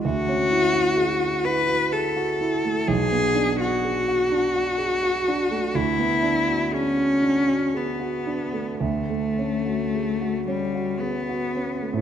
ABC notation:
X:1
M:3/4
L:1/16
Q:1/4=62
K:Dlyd
V:1 name="Grand piano"
D,, C E F G F E F G F E A, | B,,, B, D F G F D F G F D A, | D,, B, D F G F D F G F D A, | D,, A, C F G F C F G F C A, |]
V:2 name="Cello"
F6 B2 A4 | G3 F8- F | E4 C4 B,4 | A,6 =G,2 B,4 |]